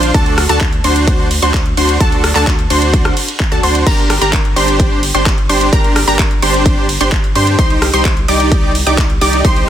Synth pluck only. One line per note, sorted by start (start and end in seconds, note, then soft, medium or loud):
0.00 0.11 C6 loud
0.14 0.41 A5 loud
0.49 0.66 A5 loud
0.84 1.28 C6 medium
1.42 1.59 C6 medium
1.77 1.97 C6 loud
2.01 2.28 A5 loud
2.35 2.52 A5 loud
2.70 3.14 C6 medium
3.52 3.61 A5 loud
3.63 3.84 C6 loud
3.87 4.14 A#5 loud
4.21 4.38 A#5 loud
4.56 5.00 C6 medium
5.15 5.31 C6 medium
5.49 5.69 C6 loud
5.73 6.00 A#5 loud
6.08 6.24 A#5 loud
6.42 6.86 C6 medium
7.01 7.17 C6 medium
7.35 7.55 C6 loud
7.59 7.86 C6 loud
7.94 8.10 C6 loud
8.28 8.72 D6 medium
8.87 9.03 D6 medium
9.21 9.41 D6 loud
9.45 9.69 C6 loud